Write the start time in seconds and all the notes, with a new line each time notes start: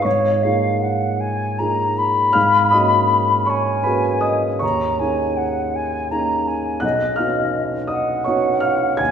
0.02 G#2 C#5 C#6
0.42 A#3 D#4 F4 G#4 F5
0.81 F#5
1.20 G#5
1.58 A#3 D#4 F4 G#4 A#5
1.98 B5
2.33 G#2 F5 F6
2.71 A#3 C#4 F#4 G#4 D#5 D#6
3.46 C#5 G#5 C#6
3.83 A#3 C#4 F#4 G#4 B4 B5
4.21 D#5 D#6
4.59 D#2 C#5 A#5 C#6
4.99 A#3 C#4 D#4 G#4 G#5
5.37 F#5
5.75 G#5
6.11 A#3 C#4 D#4 G#4 A#5
6.47 G#5
6.80 B1 D#5 F#5 F#6
7.16 B3 C#4 D#4 F#4 F5 F6
7.87 D#5 F#5 D#6
8.24 B3 C#4 D#4 F#4 C#5 C#6
8.60 F5 F6
8.97 D#2 G#5 G#6